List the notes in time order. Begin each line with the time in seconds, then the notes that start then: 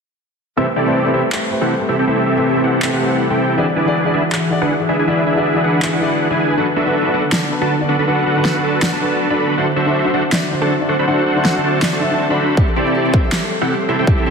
0.57 G3 A3 C4 E4 G4 A4 B4 C5 E5
0.76 C4 E4 G4 A4 D5
0.86 A3 E4 G4 B4 C5
1.04 A3 E4 G4 B4 C5
1.14 C4 E4 G4 A4 E5
1.31 A3 E4 G4 B4 C5, clap
1.50 A3 E4 G4 B4 C5
1.61 C4 E4 G4 A4 F#5
1.79 A3 E4 G4 B4 C5
1.89 C4 E4 G4 A4 E5
1.99 C4 E4 G4 A4 G5
2.06 A3 C4 E4 G4 A4 B4 C5 E5
2.26 C4 E4 G4 A4 E5
2.36 A3 E4 G4 B4 C5
2.54 A3 E4 G4 B4 C5
2.64 C4 E4 G4 A4 F#5
2.81 A3 C4 E4 G4 A4 B4 C5 E5, clap
2.93 C4 E4 G4 A4 F#5
3.00 A3 E4 G4 B4 C5
3.29 A3 C4 E4 G4 A4 B4 C5 G5
3.57 E3 D4 E4 F#4 G#4 B4 D5 E5
3.76 D4 E4 G#4 B4 D5
3.86 E3 E4 F#4 G#4 D5
4.04 E3 E4 F#4 G#4 D5
4.14 D4 E4 G#4 B4 E5
4.31 E3 G#4 E5, clap
4.50 E3 E4 F#4 G#4 D5
4.62 D4 E4 G#4 B4 F#5
4.79 E3 E4 F#4 G#4 E5
4.89 D4 E4 G#4 B4 E5
4.99 D4 E4 G#4 B4 G#5
5.06 E3 D4 E4 F#4 G#4 B4 D5 E5
5.26 D4 E4 G#4 B4 E5
5.35 E3 E4 F#4 G#4 D5
5.54 E3 E4 F#4 G#4 D5
5.64 D4 E4 G#4 B4 F#5
5.81 E3 E4 F#4 G#4 E5, clap
5.93 D4 E4 G#4 B4 F#5
6.00 E3 E4 F#4 G#4 D5
6.30 E3 D4 E4 F#4 G#4 B4 E5 G#5
6.57 D3 B3 D4 F#4 A4 B4 F#5
6.76 D4 F#4 A4 B4 E5
6.86 D3 D4 F#4 A4 B4
7.04 D3 D4 F#4 A4 B4
7.14 D4 F#4 A4 B4 F#5
7.32 D3 D4 F#4 A4 D5, snare, clap
7.50 D3 D4 F#4 A4 B4
7.62 D4 F#4 A4 B4 A5
7.79 D3 D4 F#4 A4 D5
7.89 D4 F#4 A4 B4 F#5
7.99 D4 F#4 A4 B4 B5
8.07 D3 D4 F#4 A4 B4 F#5
8.26 D4 F#4 A4 B4 F#5
8.36 D3 D4 F#4 A4 B4
8.45 snare
8.54 D3 D4 F#4 A4 B4
8.64 D4 F#4 A4 B4 A5
8.82 D3 D4 F#4 A4 D5 F#5, snare, clap
8.93 D4 F#4 A4 B4 A5
9.00 D3 D4 F#4 A4 B4
9.29 D3 D4 F#4 A4 B4 D5 B5
9.57 D3 C4 D4 E4 F#4 A4 C5 F#5
9.76 D4 F#4 A4 C5 E5
9.86 D3 D4 E4 F#4 C5
10.04 D3 D4 E4 F#4 C5
10.14 D4 F#4 A4 C5 F#5
10.32 D3 D4 E4 F#4 D5, snare, clap
10.50 D3 D4 E4 F#4 C5
10.62 D4 F#4 A4 C5 A5
10.79 D3 D4 E4 F#4 D5
10.89 D4 F#4 A4 C5 F#5
10.99 D4 F#4 A4 C5 B5
11.06 D3 D4 E4 F#4 A4 C5 F#5
11.26 D4 F#4 A4 C5 F#5
11.36 D3 D4 E4 F#4 C5
11.45 snare
11.54 D3 D4 E4 F#4 C5
11.64 D4 F#4 A4 C5 A5
11.81 D3 D4 E4 F#4 C5 D5, snare, clap
11.93 D4 F#4 A4 C5 A5
12.00 D3 D4 E4 F#4 E5
12.10 D3 D4 E4 F#4 E5
12.29 D3 D4 E4 F#4 A4 C5 D5 B5
12.57 G3 C4 E4 G4 A4 E5, kick
12.68 A4
12.76 C4 E4 G4 A4 C5 D5
12.87 E5
12.95 G4
13.05 C5
13.14 C4 E4 A4 C5 E5, kick
13.24 E5
13.32 G4, snare, clap
13.43 A4
13.51 C5
13.61 C4 E4 G4 A4 E5 F#5
13.70 G4
13.80 C5
13.89 C4 E4 G4 A4 C5 E5
13.99 C4 E4 G4 A4 E5 G5
14.07 G4, kick
14.18 A4
14.26 C4 E4 G4 A4 C5 E5